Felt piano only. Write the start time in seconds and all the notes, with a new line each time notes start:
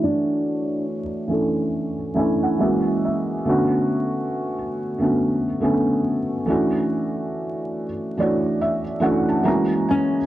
Already playing: E3 A3 D4 F#4 A4 C#5
1.28 E3 A3 C#4 D4
1.32 A4
2.14 E3 A3 C#4 D4 G#5
2.19 E4
2.43 F#5
2.58 E3 G#3 A#3 C#4 E5
2.63 F#4
3.05 E5
3.45 D3 A3 B3 C#4
3.49 F#4
4.98 D3 A3 B3 C#4
5.03 F#4
5.60 D3 A3 B3 C#4
5.64 A4
6.46 E3 A3 C#4 D4
6.50 F#4
8.17 E3 A3 D4 C#5 D5
8.22 F#4
8.61 E5
9.00 E3 A3 C#4 D4 F#5
9.04 F#4
9.29 A5
9.43 E3 G#3 A#3 C#4 A#5
9.48 F#4
9.89 G#5